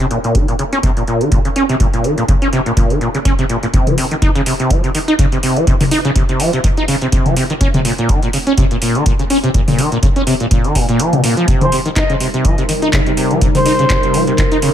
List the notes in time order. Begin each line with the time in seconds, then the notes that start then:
0.00 C3
0.11 A#2, closed hi-hat
0.24 A#2, closed hi-hat
0.35 D#3, kick, closed hi-hat
0.48 A#2, closed hi-hat
0.59 C#3, closed hi-hat
0.73 C#4, closed hi-hat
0.83 C3, kick, closed hi-hat
0.97 A#2, closed hi-hat
1.07 A#2, closed hi-hat
1.21 D#3, closed hi-hat
1.32 A#2, kick, closed hi-hat
1.45 C#3, closed hi-hat
1.56 C#4, closed hi-hat
1.69 C3, closed hi-hat
1.80 A#2, kick, closed hi-hat
1.94 A#2, closed hi-hat
2.04 D#3, closed hi-hat
2.18 A#2, closed hi-hat
2.28 C#3, kick, closed hi-hat
2.42 C#4, closed hi-hat
2.53 C3, closed hi-hat
2.66 A#2, closed hi-hat
2.77 A#2, kick, closed hi-hat
2.90 D#3, closed hi-hat
3.01 A#2, closed hi-hat
3.15 C#3, closed hi-hat
3.25 C#4, kick, closed hi-hat
3.39 C3, closed hi-hat
3.49 A#2, closed hi-hat
3.63 A#2, closed hi-hat
3.74 C3, kick, closed hi-hat
3.87 F3, closed hi-hat, mid tom
3.98 C3, open hi-hat
4.11 D#3, closed hi-hat
4.22 D#4, kick, closed hi-hat
4.35 C#3, closed hi-hat
4.46 C3, open hi-hat
4.60 C3, closed hi-hat
4.70 F3, kick, closed hi-hat
4.84 C3, closed hi-hat
4.95 D#3, open hi-hat
5.08 D#4, closed hi-hat
5.19 C#3, kick, closed hi-hat
5.32 C3, closed hi-hat
5.43 C3, open hi-hat
5.56 F3, closed hi-hat
5.67 C3, kick, closed hi-hat
5.81 D#3, open hi-hat, mid tom
5.91 D#4, open hi-hat
6.05 C#3, closed hi-hat
6.16 C3, kick, closed hi-hat
6.29 C3, closed hi-hat
6.40 F3, open hi-hat
6.53 C3, closed hi-hat
6.64 D#3, kick, closed hi-hat
6.77 D#4, closed hi-hat
6.88 C#3, open hi-hat
7.02 C3, closed hi-hat
7.12 C3, kick, closed hi-hat
7.26 F3, closed hi-hat, mid tom
7.37 C3, open hi-hat
7.50 D#3, closed hi-hat
7.61 C#4, kick, closed hi-hat
7.74 C3, closed hi-hat, mid tom
7.85 A#2, open hi-hat
7.98 A#2, closed hi-hat
8.09 D#3, kick, closed hi-hat
8.23 A#2, closed hi-hat
8.33 C#3, open hi-hat
8.47 C#4, closed hi-hat
8.58 C3, kick, closed hi-hat
8.71 A#2, closed hi-hat
8.82 A#2, open hi-hat
8.95 D#3, closed hi-hat
9.06 A#2, kick, closed hi-hat
9.19 C#3, closed hi-hat
9.30 C#4, open hi-hat
9.44 C3, closed hi-hat
9.54 A#2, kick, closed hi-hat
9.68 A#2, open hi-hat, mid tom
9.79 D#3, open hi-hat
9.92 A#2, closed hi-hat
10.03 C#3, kick, closed hi-hat
10.16 C#4, closed hi-hat
10.27 C3, open hi-hat
10.40 A#2, closed hi-hat
10.51 A#2, kick, closed hi-hat
10.64 D#3, closed hi-hat
10.75 A#2, kick, open hi-hat
10.89 A#2, closed hi-hat
10.99 F3, closed hi-hat
11.13 A#2, closed hi-hat, mid tom
11.24 A#2, open hi-hat
11.37 F3, closed hi-hat
11.48 C3 G3 D#4 A#4, kick, closed hi-hat
11.61 F3 C5, closed hi-hat, mid tom
11.72 C3, open hi-hat
11.85 D#3, closed hi-hat
11.96 D#4 D#5, kick, clap, closed hi-hat
12.10 C#3, closed hi-hat
12.20 C3, open hi-hat
12.34 C3, closed hi-hat
12.45 F3, kick, closed hi-hat
12.58 C3, closed hi-hat
12.69 D#3, open hi-hat
12.82 D#4, closed hi-hat
12.93 C#3, kick, clap, closed hi-hat
13.06 C3, closed hi-hat
13.17 C3, open hi-hat
13.31 F3, closed hi-hat
13.41 C3, kick, closed hi-hat
13.55 D#3 C5, open hi-hat, mid tom
13.66 D#4, open hi-hat
13.79 C#3, closed hi-hat
13.90 C3, kick, clap, closed hi-hat
14.03 C3, closed hi-hat
14.14 F3, open hi-hat
14.27 C3, closed hi-hat
14.38 D#3, kick, clap, closed hi-hat
14.52 D#4, closed hi-hat
14.62 C#3, open hi-hat